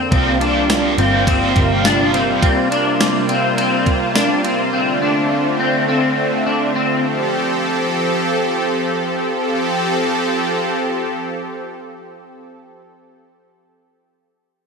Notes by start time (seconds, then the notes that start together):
Already playing: C4
0.11 C2 C3 F3 G3 A#3 C4 F4 G4, kick, ride
0.40 D4 F4 G4, ride
0.45 A#3
0.69 C3 F3 A#3 F4 G4, snare, ride, tambourine
0.97 G1 C4 F4 G4, ride
1.02 A#3
1.26 F3 A#3 C4 F4, kick, ride
1.31 G4
1.56 G1 F4 G4, kick, ride
1.60 A#3
1.85 C3 F3 A#3 D4 F4 G4, snare, ride, tambourine
2.13 C4 F4 G4, ride
2.17 A#3
2.43 C4, kick, ride
2.71 D4, ride
3.01 snare, ride, tambourine
3.29 C4, ride
3.57 C4, ride
3.86 kick, ride
4.15 D4, snare, ride, tambourine
4.44 C4, ride
4.73 D3 A3 C4
5.02 D4
5.59 C4
5.88 C4
6.46 D4
6.75 C4
7.04 F3 G4 A4
9.34 F3 C4 G4 A4